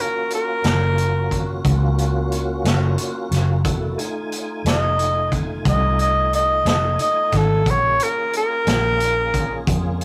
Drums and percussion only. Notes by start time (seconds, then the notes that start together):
0.30 closed hi-hat
0.64 snare, closed hi-hat
0.98 closed hi-hat
1.31 kick, closed hi-hat
1.65 kick, closed hi-hat
1.98 closed hi-hat
2.32 closed hi-hat
2.65 snare, closed hi-hat
2.98 closed hi-hat
3.32 snare, closed hi-hat
3.65 kick, closed hi-hat
3.99 closed hi-hat
4.32 closed hi-hat
4.66 snare, closed hi-hat
4.99 closed hi-hat
5.32 kick, closed hi-hat
5.65 kick, closed hi-hat
5.99 closed hi-hat
6.33 closed hi-hat
6.66 snare, closed hi-hat
6.99 closed hi-hat
7.32 kick, snare, closed hi-hat
7.66 kick, closed hi-hat
8.00 closed hi-hat
8.33 closed hi-hat
8.67 snare, closed hi-hat
9.00 closed hi-hat
9.34 kick, closed hi-hat
9.67 kick, closed hi-hat
10.01 closed hi-hat